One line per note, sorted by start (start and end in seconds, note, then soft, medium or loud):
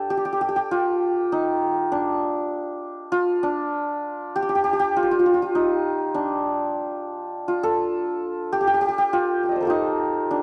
0.00 1.38 D4 medium
0.00 2.15 A4 medium
0.10 0.17 G4 medium
0.17 0.25 G4 medium
0.25 0.32 G4 medium
0.33 0.41 G4 medium
0.41 0.48 G4 medium
0.49 0.56 G4 medium
0.56 3.70 G4 medium
0.71 3.11 F4 medium
1.32 1.98 D#4 medium
1.92 3.42 D4 medium
3.12 4.96 F4 medium
3.43 5.61 D4 medium
4.36 4.42 G4 medium
4.42 4.49 G4 medium
4.49 4.55 G4 medium
4.55 4.63 G4 medium
4.64 4.72 G4 medium
4.73 4.79 G4 medium
4.79 7.94 G4 medium
4.96 5.02 F4 medium
5.03 5.11 F4 medium
5.11 5.19 F4 medium
5.19 5.25 F4 medium
5.26 5.34 F4 medium
5.34 5.42 F4 medium
5.42 7.48 F4 medium
5.55 6.20 D#4 medium
6.14 9.55 D4 medium
7.48 9.13 F4 medium
7.63 9.62 A4 medium
8.53 8.60 G4 medium
8.61 8.67 G4 medium
8.67 8.73 G4 medium
8.74 8.81 G4 medium
8.81 8.88 G4 medium
8.89 8.98 G4 medium
8.98 9.65 G4 medium
9.13 9.67 F4 medium
9.43 10.43 F5 soft
9.43 10.43 G5 soft
9.49 9.76 D5 soft
9.49 10.37 D#5 soft
9.56 10.43 C5 soft
9.61 10.43 A4 soft
9.61 10.43 A#4 soft
9.65 10.43 F4 medium
9.65 10.43 G4 soft
9.70 10.37 D#4 medium
10.31 10.43 D4 medium